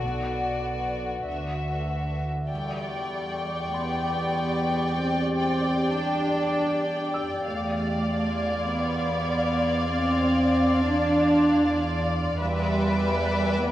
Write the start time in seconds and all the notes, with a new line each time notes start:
Already playing: F#4 D5 F#5
0.02 B1 B2 B4 D5
1.26 D2 D3 A4 E5
2.50 E2 G3 G4 D5 G5 C#6
3.74 B3 C6
4.98 C4
5.50 C6
5.61 D5
5.90 D4
7.14 E6
7.44 E2 A3 D5 F5 C6 D6
8.07 G#6
8.69 B3
9.92 C4
10.23 D5
10.85 D4
12.39 E2 G3 B4 D5 E5 G5 G#5 D6
12.70 E5
13.63 B3